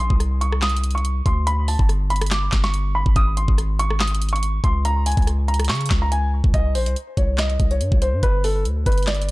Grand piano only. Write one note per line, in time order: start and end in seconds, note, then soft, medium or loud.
0.00 0.18 C6 medium
0.41 0.60 C#6 medium
0.63 0.93 D#6 medium
0.95 1.24 C#6 medium
1.26 1.44 C6 medium
1.47 1.65 B5 loud
1.68 1.87 A5 medium
2.10 2.29 B5 medium
2.32 2.62 D6 medium
2.64 2.93 C#6 medium
2.95 3.13 B5 medium
3.16 3.35 D#6 loud
3.37 3.56 C6 medium
3.79 3.98 C#6 medium
4.01 4.31 D#6 medium
4.33 4.62 C#6 medium
4.64 4.82 C6 medium
4.85 5.04 A#5 loud
5.06 5.25 G#5 medium
5.48 5.67 A#5 medium
5.70 6.00 C#6 medium
6.02 6.11 A#5 medium
6.12 6.30 G#5 medium
6.54 6.72 D#5 loud
6.75 6.94 C5 medium
7.17 7.36 C#5 medium
7.39 7.69 D#5 medium
7.71 8.00 C#5 medium
8.02 8.20 C5 medium
8.23 8.41 B4 medium
8.44 8.63 A4 medium
8.86 9.05 B4 medium
9.08 9.31 D5 medium